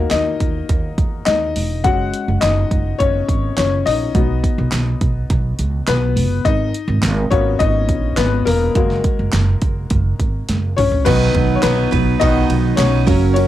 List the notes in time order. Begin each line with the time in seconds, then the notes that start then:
Already playing: A#3 D#4 F#4 A#4
0.11 D#2 D#4 D#5, snare, clap, closed hi-hat
0.40 D#2, kick, closed hi-hat
0.69 D#2, kick, closed hi-hat
0.98 E2, kick, closed hi-hat
1.25 D#2 D#4 D#5, snare, clap, closed hi-hat
1.56 E1, open hi-hat
1.84 F#1 G#3 C#4 F#4 F#5, kick, closed hi-hat
2.14 closed hi-hat
2.28 F#1
2.41 F#1 D#4 D#5, snare, clap, closed hi-hat
2.71 F#1, kick, closed hi-hat
2.99 F#1 C#4 C#5, kick, closed hi-hat
3.29 G#1, kick, closed hi-hat
3.57 F#1 C#4 C#5, snare, clap, closed hi-hat
3.86 A#1 D#4 D#5, open hi-hat
4.15 B1 B3 D#4 F#4, kick, closed hi-hat
4.44 kick, closed hi-hat
4.58 B1
4.72 B1, snare, clap, closed hi-hat
5.01 B1, kick, closed hi-hat
5.30 B1, kick, closed hi-hat
5.59 C#2, closed hi-hat
5.87 B1 B3 B4, snare, clap, closed hi-hat
6.16 F#1, open hi-hat
6.45 G#1 D#4 D#5, kick, closed hi-hat
6.74 closed hi-hat
6.88 G#1
7.02 G#1, snare, clap, closed hi-hat
7.30 G#1 A#3 B3 C#4 F#4 C#5, kick, closed hi-hat
7.59 G#1 D#4 D#5, kick, closed hi-hat
7.89 A#1, kick, closed hi-hat
8.16 G#1 B3 B4, snare, clap, closed hi-hat
8.45 E1 A#3 A#4, open hi-hat
8.75 F#1 G#3 A#3 F#4, kick, closed hi-hat
8.90 snare
9.04 kick, closed hi-hat
9.19 F#1
9.33 F#1, snare, clap, closed hi-hat
9.62 F#1, kick, closed hi-hat
9.90 F#1, kick, closed hi-hat
10.20 G#1, kick, closed hi-hat
10.49 F#1, snare, closed hi-hat
10.77 A#1 C#4 C#5, mid tom, open hi-hat
10.92 floor tom
11.05 B1 B2 D#3 F#3 B3 D#4 B4, kick, crash, ride
11.35 B1, kick, ride
11.55 C#5
11.62 B1 F#3 B3 D#4 B4, snare, clap, ride
11.66 B4
11.91 B1 F#3 B3 D#4 B4, kick, ride
12.20 B1 B2 D#3 F#3 B3 D#4 B4 D#5, kick, ride
12.49 B1, ride
12.76 B1 F#3 B3 C#4 D#4 C#5, snare, clap, ride
12.81 B4
13.07 F#1 F#3 A#3 C#4 F#4 A#4, kick, open hi-hat, ride
13.34 C#4 C#5, ride